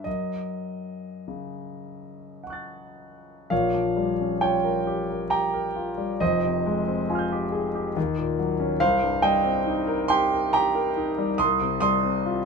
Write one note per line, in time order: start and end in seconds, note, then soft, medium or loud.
0.04 3.47 F#2 soft
0.04 2.42 D#5 medium
1.28 3.52 C#3 soft
2.44 3.47 F#5 soft
2.44 3.49 C#6 soft
2.50 3.51 F#6 soft
2.50 3.52 A6 soft
3.50 6.17 A#1 soft
3.50 6.18 A#2 soft
3.50 4.39 C#5 medium
3.50 4.42 F5 medium
3.74 4.11 F3 soft
3.97 4.33 G3 soft
4.20 4.56 C#4 soft
4.41 4.79 F4 soft
4.41 5.27 C#5 medium
4.41 5.29 G5 medium
4.64 5.00 A#4 soft
4.87 5.23 G4 soft
5.09 5.45 A#4 soft
5.30 5.67 G4 soft
5.30 6.17 G5 medium
5.30 6.21 A#5 medium
5.54 5.90 A#4 soft
5.76 6.12 F4 soft
5.98 6.21 G3 soft
6.20 7.92 F1 soft
6.20 7.93 F2 medium
6.20 8.35 C5 medium
6.20 8.38 D#5 medium
6.45 6.80 C3 soft
6.66 7.02 G#3 soft
6.88 7.23 C4 soft
7.09 7.45 F4 medium
7.09 7.92 G#5 soft
7.09 7.93 C6 soft
7.15 7.95 F6 soft
7.15 7.97 G6 soft
7.32 7.67 G4 medium
7.52 7.87 G#4 medium
7.75 7.97 G4 soft
7.97 8.78 D#2 medium
8.18 8.51 A#2 soft
8.39 8.72 F#3 soft
8.60 8.81 C#4 soft
8.80 11.35 C2 medium
8.80 9.20 C5 medium
8.80 9.23 F5 loud
9.03 9.36 G2 medium
9.22 9.58 G3 medium
9.22 10.07 D#5 medium
9.22 10.08 G5 medium
9.44 9.80 C4 soft
9.66 10.02 D#4 medium
9.87 10.23 A#4 medium
10.08 10.45 G4 medium
10.08 10.51 G5 medium
10.08 10.53 C6 loud
10.32 10.66 A#4 medium
10.53 10.88 G4 medium
10.53 11.35 G5 medium
10.53 11.38 A#5 loud
10.75 11.09 A#4 medium
10.97 11.31 D#4 medium
11.18 11.39 G3 medium
11.38 12.45 C2 medium
11.38 11.78 C6 medium
11.38 11.79 D#6 loud
11.61 11.94 C3 medium
11.80 12.16 G3 medium
11.80 12.45 C6 medium
11.80 12.45 D#6 loud
12.03 12.37 C4 soft
12.26 12.45 F4 medium